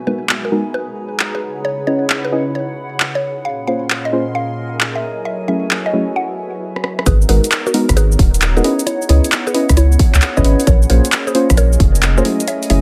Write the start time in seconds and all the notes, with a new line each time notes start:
Already playing: G#3 B3 D#4 F#4 G#4 A#4 B4 G#5
0.07 G#3 B3 D#4 F#4 A#4 B4
0.29 clap
0.34 C#5 F#5
0.45 A#4
0.52 G#3 B3 D#4 F#4 A#4
0.74 B4
1.20 clap
1.35 B4
1.42 C#3 E4 G#4
1.65 C#5
1.70 B5
1.87 C#4 E4 G#4 B4 C#5 D#5
2.10 clap
2.25 B4
2.32 C#4 E4 G#4 B4 D#5
2.55 C#5
3.00 clap
3.15 C#5
3.45 A#2 C#4 F4 A#4 F5 C6
3.67 A#3 C#4 F4 G#4 C5 F5
3.79 G#5
3.90 clap
4.05 D#5
4.13 A#3 C#4 F4 G#4 C5
4.35 F5
4.81 clap
4.95 E5
5.03 F#3 E4 F#4 A4 C#5
5.25 E5
5.48 F#3 A3 C#4 E4 G#4 E5
5.71 clap
5.86 D#5
5.93 F#3 A3 C#4 E4 G#4
6.16 F#5
6.76 cross-stick
6.84 cross-stick
6.99 cross-stick
7.06 G#1 B3 D#4 F#4 G#4 A#4 B4 C#5, kick, closed hi-hat, cabasa
7.22 F#5, cabasa
7.29 G#1 G#3 B3 D#4 F#4 G#4 A#4 B4, open hi-hat
7.44 closed hi-hat, cabasa
7.52 clap, closed hi-hat, cabasa
7.67 F#4 A#4, cabasa
7.74 G#3 B3 D#4 F#4 A#4, open hi-hat
7.89 G#1, kick, cross-stick, closed hi-hat, cabasa
7.97 G#4 B4, closed hi-hat, cabasa
8.12 cabasa
8.19 D#1, kick, open hi-hat
8.34 closed hi-hat, cabasa
8.42 clap, closed hi-hat, cabasa
8.57 G#3 B3 D#4 F#4 G#4 A#4 B4, cabasa
8.64 B3 C#4 E4 G#4 B4 D#5, open hi-hat
8.79 closed hi-hat, cabasa
8.87 E4 C#5, closed hi-hat, cabasa
9.02 cabasa
9.09 C#2 C#4 E4 G#4 B4 C#5 D#5, open hi-hat
9.24 closed hi-hat, cabasa
9.32 clap, closed hi-hat, cabasa
9.47 G#4 B4, cabasa
9.54 C#4 E4 G#4 B4 D#5, open hi-hat
9.69 C#2, kick, cross-stick, closed hi-hat, cabasa
9.77 E4 C#5, closed hi-hat, cabasa
9.92 cabasa
9.99 kick, open hi-hat
10.14 C#2, clap, closed hi-hat, cabasa
10.22 clap, closed hi-hat, cabasa
10.37 G#1 C#4 E4 G#4 B4 C#5 D#5, kick, cabasa
10.44 G#1 C#4 E4 G#4 B4 D#5, open hi-hat
10.60 open hi-hat, cabasa
10.67 A#1 A#3 C#4 F4 A#4 C#5, kick, closed hi-hat, cabasa
10.82 cabasa
10.90 A#1 A#3 C#4 F4 G#4 A#4 C5 C#5, open hi-hat
11.05 closed hi-hat, cabasa
11.12 clap, closed hi-hat, cabasa
11.27 G#4 C5, cabasa
11.35 A#3 C#4 F4 G#4 C5, open hi-hat
11.39 G#5
11.50 A#1, kick, cross-stick, closed hi-hat, cabasa
11.57 A#4 C#5, closed hi-hat, cabasa
11.73 cabasa
11.80 F1, kick, open hi-hat
11.95 closed hi-hat, cabasa
12.03 clap, closed hi-hat, cabasa
12.17 A#3 C#4 F4 G#4 A4 C5 C#5, cabasa
12.25 F#3 A3 C#4 E4 G#4 B4, open hi-hat
12.40 closed hi-hat, cabasa
12.48 C#5 E5, closed hi-hat, cabasa
12.63 open hi-hat, cabasa
12.70 F#1 F#3 A3 C#4 E4 G#4 C#5 E5, open hi-hat